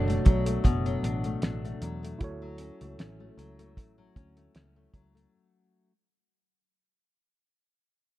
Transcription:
Already playing: picked electric bass F#1, nylon-string guitar B2 F#3 D4, tine electric piano D4 F#4 A4 C#5
0.08 nylon-string guitar A3, closed hi-hat
0.25 picked electric bass B1, nylon-string guitar F#3, kick, closed hi-hat
0.46 nylon-string guitar A3, closed hi-hat
0.64 picked electric bass F#1, nylon-string guitar B2, kick, closed hi-hat
0.86 nylon-string guitar F#3, closed hi-hat
1.03 picked electric bass A1, nylon-string guitar D4, closed hi-hat
1.24 nylon-string guitar A3, closed hi-hat
1.42 picked electric bass A1, nylon-string guitar D4, snare, closed hi-hat
1.64 nylon-string guitar A3, closed hi-hat
1.82 picked electric bass E2, nylon-string guitar F#3, closed hi-hat
2.03 nylon-string guitar A3, closed hi-hat
2.18 picked electric bass D2, tine electric piano E4 F#4 A4, kick, closed hi-hat
2.24 tine electric piano C#5
2.42 nylon-string guitar F#3
2.58 nylon-string guitar C#4, closed hi-hat
2.81 picked electric bass C#2, nylon-string guitar A3, closed hi-hat
2.99 picked electric bass A1, nylon-string guitar C#4, snare, closed hi-hat
3.20 nylon-string guitar A3
3.37 picked electric bass C#2, nylon-string guitar F#3, closed hi-hat
3.59 nylon-string guitar A3, closed hi-hat
3.77 picked electric bass A1, kick, closed hi-hat
3.98 nylon-string guitar F#3
4.16 picked electric bass D2, nylon-string guitar C#4, kick, closed hi-hat
4.37 nylon-string guitar A3, closed hi-hat
4.55 picked electric bass C#2, nylon-string guitar C#4, snare, closed hi-hat
4.76 nylon-string guitar A3
4.94 picked electric bass C#2, nylon-string guitar F#3, kick, closed hi-hat
5.15 nylon-string guitar A3, closed hi-hat

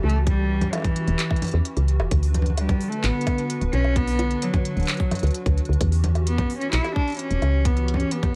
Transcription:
Already playing: analog synth pad E3 C#4 F#4 G4
0.04 fm bass C#2, cello A3
0.09 closed hi-hat
0.27 cello G3, kick, closed hi-hat
0.61 closed hi-hat, low conga
0.73 cello E3, closed hi-hat, high bongo
0.75 high bongo
0.78 high bongo
0.80 high bongo
0.82 kick, closed hi-hat, high bongo, low conga
0.96 closed hi-hat
1.08 fm bass E1, closed hi-hat
1.19 clap, closed hi-hat
1.31 kick, high bongo
1.36 closed hi-hat
1.42 closed hi-hat, low conga
1.44 closed hi-hat
1.47 closed hi-hat
1.49 closed hi-hat
1.51 fm bass E2, closed hi-hat
1.65 closed hi-hat
1.77 fm bass C#2, closed hi-hat
1.88 closed hi-hat
2.00 fm bass E1, high bongo
2.11 fm bass D2, analog synth pad D3 D4 B4, kick, closed hi-hat
2.23 open hi-hat
2.34 closed hi-hat, low conga
2.42 closed hi-hat, low conga
2.50 low conga
2.57 cello G3, closed hi-hat, high bongo
2.69 kick, closed hi-hat, low conga
2.81 open hi-hat
2.88 cello A3, closed hi-hat
3.04 fm bass A1, cello B3, clap, closed hi-hat
3.21 closed hi-hat
3.27 kick, closed hi-hat, high bongo
3.38 closed hi-hat
3.50 closed hi-hat
3.61 fm bass D1, closed hi-hat
3.73 fm bass B1, cello C#4, closed hi-hat
3.84 high bongo
3.96 cello B3, kick, closed hi-hat
4.07 open hi-hat
4.19 closed hi-hat, low conga
4.31 closed hi-hat
4.42 cello F#3, closed hi-hat
4.54 kick, closed hi-hat, low conga
4.65 closed hi-hat
4.77 fm bass D1, closed hi-hat
4.80 closed hi-hat
4.83 closed hi-hat
4.85 clap, closed hi-hat
4.88 closed hi-hat
4.94 closed hi-hat
4.97 closed hi-hat
5.00 kick, closed hi-hat
5.11 closed hi-hat, high bongo, low conga
5.15 closed hi-hat
5.19 fm bass D2, closed hi-hat
5.23 closed hi-hat
5.27 closed hi-hat
5.31 closed hi-hat
5.34 closed hi-hat
5.46 fm bass D2, kick, closed hi-hat
5.58 closed hi-hat
5.65 fm bass D2, closed hi-hat
5.73 closed hi-hat
5.81 fm bass E2, analog synth pad E3 C#4 G4, kick, closed hi-hat
5.92 open hi-hat
6.04 closed hi-hat, low conga
6.15 closed hi-hat, high bongo
6.27 cello B3, closed hi-hat
6.38 kick, closed hi-hat, low conga
6.50 open hi-hat
6.57 cello C#4, closed hi-hat
6.73 fm bass B1, cello E4, clap, closed hi-hat
6.84 closed hi-hat, high bongo
6.96 cello D4, kick
7.08 closed hi-hat
7.10 closed hi-hat
7.12 closed hi-hat
7.14 closed hi-hat
7.17 cello C#4, closed hi-hat
7.19 closed hi-hat
7.31 fm bass E1, closed hi-hat
7.42 fm bass C#2, closed hi-hat, high bongo
7.65 cello B3, kick, closed hi-hat
7.77 closed hi-hat
7.88 closed hi-hat
7.94 cello C#4, low conga
8.00 closed hi-hat
8.11 cello B3, closed hi-hat
8.23 kick, closed hi-hat, low conga

